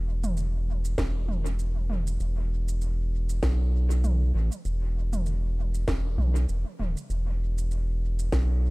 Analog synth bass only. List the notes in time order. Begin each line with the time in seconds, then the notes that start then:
Already playing: E1
0.98 E1
2.20 E1
3.43 B1
4.35 A1
4.65 E1
5.88 E1
6.18 B1
6.49 E1
6.80 D1
7.10 E1
8.33 B1